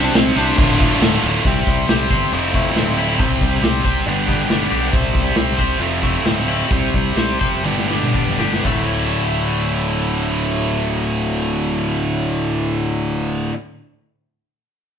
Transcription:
Already playing: C3 G3 C4 G4 C5
0.04 D4
0.14 C2 C3 G3 C4 G4 C5, snare, crash
0.36 C2 C4 D4 G4 C5, crash
0.48 snare
0.57 D1 D2 A2 D3 A3 F4, kick, crash
0.79 D2 A2 D3 A3 F4, kick, crash
1.00 D1 A2 D3 A3 F4, snare, crash
1.23 D1 D3 A3 F4, crash
1.45 C2 C3 G3 C4 G4 C5, kick, open hi-hat
1.67 C2 G3, kick
1.88 C2 G3 C4 G4 C5, snare, open hi-hat
2.10 G1 C4 G4 C5, kick
2.32 F1 F2 C3 F3 A3 C4 E4, open hi-hat
2.54 F3 A3 C4 E4, kick
2.75 D1 F2 C3 F3 A3 C4 E4, snare, open hi-hat
2.98 E4
3.18 C2 C3 G3 C4 G4 C5, kick, open hi-hat
3.41 C2 G3, kick
3.62 C2 G3 C4 G4 C5, snare, open hi-hat
3.84 C2 C4 G4 C5, kick
4.06 G1 G2 D3 G3 B3 D4 G4, open hi-hat
4.28 G3 B3 D4 G4, kick
4.49 G1 G2 D3 G3 B3 D4 G4, snare, open hi-hat
4.71 B1 G4
4.92 C2 C3 G3 C4 G4 C5, kick, open hi-hat
5.15 C2 G3, kick
5.36 C2 G3 C4 G4 C5, snare, open hi-hat
5.57 C2 C4 G4 C5, kick
5.79 F1 F2 C3 F3 A3 C4 E4, open hi-hat
6.01 F3 A3 C4 E4, kick
6.24 D1 F2 C3 F3 A3 C4 E4, snare, open hi-hat
6.48 E4
6.70 C2 C3 G3 C4 G4 C5, kick, open hi-hat
6.94 C2 G3, kick
7.16 C2 G3 C4 G4 C5, snare, open hi-hat
7.39 F1 C4 G4 C5, kick
7.63 G1 G2 D3 G3 B3 D4 G4, high tom
7.78 snare
7.88 G3 B3 D4 G4, snare
8.02 mid tom
8.13 G1 G2 D3 G3 B3 D4 G4, kick
8.27 mid tom
8.38 G1 G4, snare
8.53 snare
8.64 D1 D2 A2 D3 A3 E4, kick, floor tom, splash

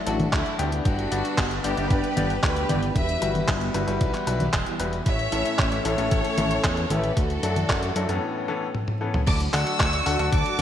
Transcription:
Already playing: E3 A3 D4 F#4
0.06 A1 F#3 D4 E4 F#4 A4, closed hi-hat
0.20 closed hi-hat, high conga
0.33 D2 A3 E4, kick, clap, closed hi-hat
0.46 closed hi-hat
0.59 D2 G2 B3 D4 G4 G5, closed hi-hat
0.72 closed hi-hat
0.85 G1 D3 G3 B3 D4 F#4 B4, kick, closed hi-hat
0.99 closed hi-hat
1.11 G1 G2 G3 B3 D4 D5, closed hi-hat
1.25 closed hi-hat
1.38 G1, kick, clap, closed hi-hat
1.51 closed hi-hat
1.64 G1 G2 B3 D4 E4 G4 D5, closed hi-hat
1.77 G1 G2 B3 D4 G4 D5, closed hi-hat
1.90 G1 G4 B4, kick, closed hi-hat
2.04 closed hi-hat
2.17 G1 G2 B3 D4 G4 D5, closed hi-hat, high conga
2.30 closed hi-hat
2.43 D2 G4 B4, kick, clap, closed hi-hat
2.56 closed hi-hat
2.69 G1 E3 B3 D4 G4 D5, closed hi-hat, high conga
2.83 closed hi-hat
2.95 E1 E3 B3 F#4 B4 E5, kick, closed hi-hat
3.09 closed hi-hat
3.22 G1 G3 E4 F#4 B4, closed hi-hat
3.35 closed hi-hat, high conga
3.48 G1, kick, clap, closed hi-hat
3.61 closed hi-hat
3.74 G1 G3 E4 F#4 B4, closed hi-hat
3.88 G1 G3 E4 F#4 B4, closed hi-hat
4.01 B1, kick, closed hi-hat
4.14 clap, closed hi-hat
4.27 B1 G3 E4 F#4 B4, closed hi-hat
4.40 closed hi-hat, high conga
4.53 E1, kick, clap, closed hi-hat
4.66 closed hi-hat
4.80 E1 G3 E4 F#4 B4, closed hi-hat
4.93 closed hi-hat
5.06 A1 A3 C#4 A4 C#5 E5, kick, closed hi-hat
5.19 closed hi-hat
5.32 A1 A2 C#4 E4 A4 E5, closed hi-hat
5.46 closed hi-hat
5.59 A1, kick, clap, closed hi-hat
5.72 closed hi-hat
5.85 A1 A2 C#4 E4 A4 C#5 E5, closed hi-hat
5.98 A1 A2 C#4 E4 A4 E5, closed hi-hat
6.11 A1, kick, closed hi-hat
6.25 closed hi-hat
6.38 A1 A2 C#4 E4 A4 E5, closed hi-hat, high conga
6.51 closed hi-hat
6.64 E2, kick, clap, closed hi-hat
6.77 closed hi-hat
6.90 A1 C#4 E4 G4 A4 B4 E5, closed hi-hat, high conga
7.04 closed hi-hat
7.17 D2 D4 F#4 A4, kick, closed hi-hat
7.30 closed hi-hat
7.43 F#2 F#3 D4 E4 A4, closed hi-hat
7.56 closed hi-hat, high conga
7.69 F#2, kick, clap, closed hi-hat
7.83 closed hi-hat
7.96 F#2 F#3 D4 E4 A4, closed hi-hat
8.09 F#2 A2 E3 B3 C#4 A4, closed hi-hat
8.48 A2 E3 B3 C#4 A4
8.75 high tom
8.88 high tom
9.01 E3 B3 C#4 A4
9.14 mid tom
9.27 D2 D3 F#3 A3 F#4 A5 D6, kick, closed hi-hat, crash
9.40 closed hi-hat
9.53 D2 D3 D4 F#4 A4 F#5 C#6 E6, clap, open hi-hat
9.67 closed hi-hat
9.80 D2, kick, clap, closed hi-hat
9.93 closed hi-hat
10.06 D2 D3 D4 F#4 A4 F#5, open hi-hat
10.19 D2 D3 D4 F#4 A4 F#5, closed hi-hat
10.32 D2 A5 D6, kick, closed hi-hat
10.46 closed hi-hat
10.59 D4

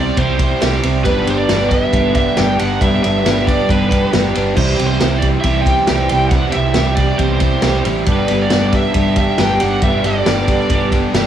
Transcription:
Already playing: C3 G3 C4 E4 G4 C5 D5
0.16 C2 G3 C4 E4 C5, kick, ride
0.39 C4 E4 G4, kick, ride
0.60 C2 C3 G3 C4 E4 G4 C5, snare, ride
0.83 C2 C4 E4 G4 C5, ride
1.03 G1 G2 D3 G3 B3 D4 G4 B4 D5, kick, ride
1.26 G1 G3 B3 D4 G4 B4, ride
1.30 C5
1.38 D5
1.49 G1 G2 D3 G3 B3 D4 G4 B4, snare, ride
1.70 B3 D4 B4 E5, kick, ride
1.74 G3
1.93 G1 G3 B3 D4 B4, kick, ride
2.14 G3 B3 D4 G4 E5, kick, ride
2.37 G1 G2 D3 G3 B3 D4 G4 B4 G5, snare, ride
2.57 G1 B3 D4 G4 B4 F#5, ride
2.62 G3
2.81 G1 G2 D3 G3 B3 D4 G4 B4 E5, kick, ride
3.02 G1 G3 B3 D4 G4 B4 E5, ride
3.25 G1 G2 D3 G3 B3 D4 G4 B4, snare, ride
3.47 G3 B3 D4 B4 D5, kick, ride
3.69 G1 G3 B3 D4 B4, kick, ride
3.89 G3 B3 D4 G4, kick, ride
4.13 G1 G2 D3 G3 B3 D4 G4 B4, snare, ride
4.33 G1 D4 G4 B4, ride
4.37 G3 B3
4.54 C2 C3 E3 G3 C4 E4 G4 C5 E5, kick, crash
4.79 C2 G3 C4 E4 G4, ride
4.87 C5
5.00 C2 C3 E3 G3 C4 E4 G4, snare, ride
5.18 G4 D5, kick, ride
5.23 C4 E4
5.40 C2 G3 C4 E5, kick, ride
5.45 E4 G4
5.61 G5
5.65 G3 E4 G4, kick, ride
5.87 C2 C3 E3 G3 C4 E4 G4, snare, ride
6.09 C2 G3 C4 E4 G4, ride
6.29 C2 C3 E3 G3 C4 E4 G4 F#5, kick, ride
6.51 C2 G3 E4 G4 E5, ride
6.55 C4
6.74 C2 C3 E3 G3 C4 E4 G4, snare, ride
6.95 G4 D5, kick, ride
7.00 C4 E4
7.18 C2 G3 C4 E4 C5, kick, ride
7.22 G4
7.40 G3 E4 G4, kick, ride
7.62 C2 C3 E3 G3 C4 E4 G4, snare, ride
7.85 A1 G3 C4 E4 G4, ride
8.06 G1 G2 D3 G3 B3 D4 G4 B4 D5, kick, ride
8.12 B4
8.28 G1 G3 B3 D4 G4, ride
8.42 D5
8.50 G1 G2 D3 G3 B3 D4 G4, snare, ride
8.66 D5
8.72 G3 B3 D4 G4 E5, kick, ride
8.94 G1 G3 B3 D4 G4, kick, ride
9.16 G3 B3 D4 G4 E5, kick, ride
9.38 G1 G2 D3 G3 B3 D4 G4 G5, snare, ride
9.60 G1 G3 B3 D4 G4 F#5, ride
9.82 G1 G2 D3 G3 B3 D4 G4 A4 E5, kick, ride
10.04 G1 G3 B3 D4 G4 D5, ride
10.26 G1 G2 D3 G3 B3 D4 G4, snare, ride
10.48 G3 B3 D4 G4, kick, ride
10.70 G1 G3 B3 D4, kick, ride
10.74 G4
10.92 G3 B3 D4 G4, kick, ride
11.13 G1 G2 D3 G3 B3 D4 G4, snare, ride

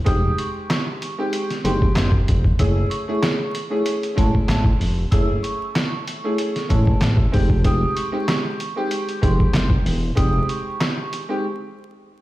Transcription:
0.04 F1 G#3 C4 D#4 G4 D#6, kick, closed hi-hat
0.38 C#6, closed hi-hat
0.70 snare, clap, closed hi-hat
1.02 closed hi-hat
1.18 G#3 C4 D#4 G4
1.33 closed hi-hat
1.50 snare, closed hi-hat
1.64 F#1 G#3 C4 D#4 G4 C6, closed hi-hat
1.82 kick
1.96 F#1, snare, clap, closed hi-hat
2.12 kick
2.28 F1, kick, closed hi-hat
2.44 kick
2.58 F#1 A3 C#4 E4 G#4 E6, kick, closed hi-hat
2.90 C#6, closed hi-hat
3.08 A3 C#4 E4 G#4
3.23 snare, clap, closed hi-hat
3.55 closed hi-hat
3.70 A3 C#4 E4 G#4
3.86 closed hi-hat
4.03 closed hi-hat
4.15 A1 G#3 A3 C#4 E4 A5, kick, closed hi-hat
4.35 kick
4.49 A1, snare, clap, closed hi-hat
4.65 kick
4.80 F1, open hi-hat
5.11 F#1 A3 C#4 E4 G#4 E6, kick, closed hi-hat
5.43 C#6, closed hi-hat
5.75 snare, clap, closed hi-hat
6.07 closed hi-hat
6.24 A3 C#4 E4 G#4
6.38 closed hi-hat
6.56 snare, closed hi-hat
6.69 A1 G#3 A3 C#4 E4 A5, kick, closed hi-hat
6.87 kick
7.01 A1, snare, clap, closed hi-hat
7.17 kick
7.32 F1 G#3 C4 D#4 G4, kick, open hi-hat
7.50 kick
7.64 G#3 C4 D#4 G4 D#6, kick, closed hi-hat
7.95 C#6, closed hi-hat
8.12 G#3 C4 D#4 G4
8.28 snare, clap, closed hi-hat
8.60 closed hi-hat
8.76 G#3 C4 D#4 G4
8.91 closed hi-hat
9.09 closed hi-hat
9.21 F1 G#3 C4 D#4 G4 C6, kick, closed hi-hat
9.40 kick
9.54 F#1, snare, clap, closed hi-hat
9.70 kick
9.86 E1, open hi-hat
10.15 F1 G#3 C4 D#4 G4 D#6, kick, closed hi-hat
10.49 C#6, closed hi-hat
10.81 snare, clap, closed hi-hat
11.13 closed hi-hat
11.29 G#3 C4 D#4 G4

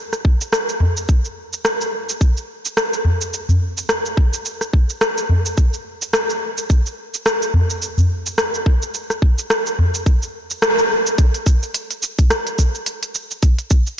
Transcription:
0.13 cross-stick, cabasa
0.25 kick
0.41 cabasa
0.53 cross-stick, cabasa
0.69 cabasa
0.80 udu
0.97 cabasa
1.09 kick, cabasa
1.25 cabasa
1.53 cabasa
1.65 cross-stick, cabasa
1.81 cabasa
2.09 cabasa
2.21 kick, cabasa
2.37 cabasa
2.65 cabasa
2.77 cross-stick, cabasa
2.93 cabasa
3.05 udu
3.21 cabasa
3.34 cabasa
3.49 udu, cabasa
3.78 cabasa
3.89 cross-stick, cabasa
4.05 cabasa
4.17 kick
4.33 cabasa
4.45 cabasa
4.61 cross-stick, cabasa
4.73 kick
4.90 cabasa
5.01 cross-stick, cabasa
5.18 cabasa
5.29 udu
5.46 cabasa
5.57 kick, cabasa
5.74 cabasa
6.02 cabasa
6.13 cross-stick, cabasa
6.30 cabasa
6.58 cabasa
6.70 kick, cabasa
6.86 cabasa
7.14 cabasa
7.26 cross-stick, cabasa
7.42 cabasa
7.54 udu
7.70 cabasa
7.82 cabasa
7.98 udu, cabasa
8.26 cabasa
8.38 cross-stick, cabasa
8.54 cabasa
8.66 kick
8.82 cabasa
8.94 cabasa
9.10 cross-stick, cabasa
9.22 kick
9.38 cabasa
9.50 cross-stick, cabasa
9.66 cabasa
9.79 udu
9.95 cabasa
10.06 kick, cabasa
10.22 cabasa
10.50 cabasa
10.62 cross-stick, cabasa
10.79 cabasa
11.07 cabasa
11.18 kick, closed hi-hat, cabasa
11.34 closed hi-hat, cabasa
11.46 kick, cabasa
11.63 cabasa
11.74 closed hi-hat, cabasa
11.91 closed hi-hat, cabasa
12.03 cabasa
12.19 kick, closed hi-hat, cabasa
12.30 cross-stick, closed hi-hat, cabasa
12.47 closed hi-hat, cabasa
12.59 kick, cabasa
12.75 cabasa
12.86 closed hi-hat, cabasa
13.03 closed hi-hat, cabasa
13.15 cabasa
13.31 cabasa
13.43 kick, closed hi-hat, cabasa
13.59 closed hi-hat, cabasa
13.71 kick, cabasa
13.87 cabasa

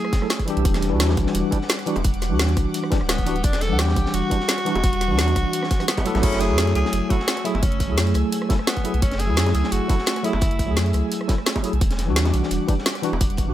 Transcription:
Already playing: A3 E4 G#4 E6
0.05 cross-stick
0.13 kick, snare, closed hi-hat
0.21 F#3 A3 E4 A4, cross-stick
0.30 snare, closed hi-hat
0.39 kick, closed hi-hat
0.45 E3 G3 D4, closed hi-hat
0.50 G4
0.57 B1, closed hi-hat
0.65 E1 G3 F#5 D6, kick, closed hi-hat
0.74 snare, closed hi-hat
0.82 snare, closed hi-hat
0.90 E2 E3 G3 D4
0.94 F#4
1.00 snare, closed hi-hat
1.09 snare, high bongo
1.17 B1, kick, closed hi-hat
1.26 snare
1.35 E1, closed hi-hat
1.51 E3 G3 D4 G4, kick, closed hi-hat
1.61 snare
1.69 snare, closed hi-hat
1.79 cross-stick, closed hi-hat
1.86 E3 G3 D4 F#4, closed hi-hat
1.96 E1, closed hi-hat, high bongo
2.04 kick, closed hi-hat
2.14 closed hi-hat
2.22 snare, closed hi-hat
2.29 E2 E3 G3 D4
2.33 F#4
2.39 snare, closed hi-hat
2.48 closed hi-hat
2.57 B1, kick, cross-stick, closed hi-hat
2.74 closed hi-hat
2.84 cross-stick
2.91 E3 G3 D4 G4, kick, snare, closed hi-hat
3.01 D1, cross-stick
3.09 B3, snare, closed hi-hat
3.18 kick, closed hi-hat
3.25 E3 G3 D4 F#4, closed hi-hat
3.36 closed hi-hat
3.44 E1 D4, kick, closed hi-hat
3.53 snare, closed hi-hat
3.61 A4, snare, closed hi-hat
3.68 E2 E3 G3 D4
3.73 F#5
3.79 G4, snare, closed hi-hat
3.88 snare, high bongo
3.96 B1, kick, closed hi-hat
4.06 snare
4.14 E1 F#4, closed hi-hat
4.30 E3 G3 D4 G4, kick, closed hi-hat
4.40 snare
4.48 snare, closed hi-hat
4.58 cross-stick, closed hi-hat
4.65 E3 G3 D4 F#4, closed hi-hat
4.75 E1, closed hi-hat, high bongo
4.84 kick, closed hi-hat
4.93 closed hi-hat
5.01 snare, closed hi-hat
5.08 E2 E3 G3 D4
5.13 F#4
5.18 snare, closed hi-hat
5.27 closed hi-hat, high bongo
5.36 B1, kick, cross-stick, closed hi-hat
5.53 closed hi-hat
5.63 cross-stick, snare
5.71 kick, snare, closed hi-hat
5.79 E3 G3 D4 G4, cross-stick, closed hi-hat
5.88 B3, snare, closed hi-hat
5.97 kick, snare, closed hi-hat, high bongo
6.04 F#3 A3 E4 A4, closed hi-hat
6.15 A1, snare, closed hi-hat, high bongo
6.22 F#1 F#3 A3 C#4 E4 G#4 G#5 E6, kick, closed hi-hat, crash
6.32 snare, closed hi-hat
6.40 G#4, snare, closed hi-hat
6.47 F#2 F#3 A3 E4
6.52 G#4
6.58 snare, closed hi-hat
6.67 snare, closed hi-hat, high bongo
6.75 C#2 G#4, closed hi-hat
6.85 snare
6.93 F#1, closed hi-hat
7.09 F#3 A3 E4 F#4 A4, kick, closed hi-hat
7.20 snare
7.28 snare, closed hi-hat
7.36 cross-stick, closed hi-hat
7.44 F#3 A3 E4 G#4, closed hi-hat
7.55 F#1, high bongo
7.63 C#4, kick, closed hi-hat
7.72 closed hi-hat
7.80 kick, closed hi-hat
7.87 F#2 F#3 A3 E4
7.92 G#4
7.97 snare, closed hi-hat
8.06 closed hi-hat
8.14 C#2, cross-stick, closed hi-hat
8.32 closed hi-hat
8.42 cross-stick
8.49 F#3 A3 E4 A4, kick, snare, closed hi-hat
8.59 cross-stick
8.67 B3, snare, closed hi-hat
8.76 kick, closed hi-hat
8.84 F#3 A3 E4 G#4, closed hi-hat
8.94 B1, closed hi-hat
9.02 F#1 C#4, kick, closed hi-hat
9.12 snare, closed hi-hat
9.19 G#4, snare, closed hi-hat
9.26 F#2 F#3 A3 E4
9.31 G#4
9.37 snare, closed hi-hat
9.46 snare, closed hi-hat, high bongo
9.54 C#2 G#4, closed hi-hat
9.63 snare
9.72 F#1 F#4, closed hi-hat
9.88 F#3 A3 E4 A4, kick, closed hi-hat
9.98 snare
10.06 snare, closed hi-hat
10.16 cross-stick, closed hi-hat
10.23 F#3 A3 E4 G#4, closed hi-hat
10.33 F#1, high bongo
10.41 kick, closed hi-hat
10.51 closed hi-hat
10.59 kick, closed hi-hat
10.66 F#2 F#3 A3 E4
10.71 G#4
10.76 snare, closed hi-hat
10.86 closed hi-hat
10.93 C#2, cross-stick, closed hi-hat
11.12 closed hi-hat
11.21 cross-stick
11.28 F#3 A3 E4 A4, kick, snare, closed hi-hat
11.38 cross-stick
11.46 snare, closed hi-hat
11.56 kick, closed hi-hat, high bongo
11.63 F#3 A3 E4 G#4, closed hi-hat
11.73 B1, closed hi-hat
11.81 E1 G3 F#5 D6, kick, closed hi-hat
11.91 snare, closed hi-hat
11.98 snare, closed hi-hat
12.06 E2 E3 G3 D4
12.10 F#4
12.16 snare, closed hi-hat
12.25 snare, closed hi-hat, high bongo
12.34 B1, closed hi-hat
12.43 snare
12.51 E1, closed hi-hat
12.67 E3 G3 D4 G4, kick, closed hi-hat
12.78 snare
12.86 snare, closed hi-hat
12.95 cross-stick, closed hi-hat
13.02 E3 G3 D4 F#4, closed hi-hat
13.13 E1, high bongo
13.21 kick, closed hi-hat
13.30 closed hi-hat
13.37 kick, closed hi-hat
13.45 E2 E3 G3 D4
13.50 F#4

